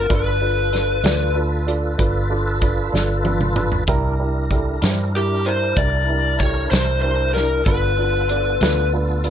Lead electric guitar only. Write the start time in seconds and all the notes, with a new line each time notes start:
Already playing: A#4
0.15 B4
5.17 G4
5.46 C5
5.77 D5
6.39 C#5
6.71 C5
7.02 C5
7.34 A#4
7.66 B4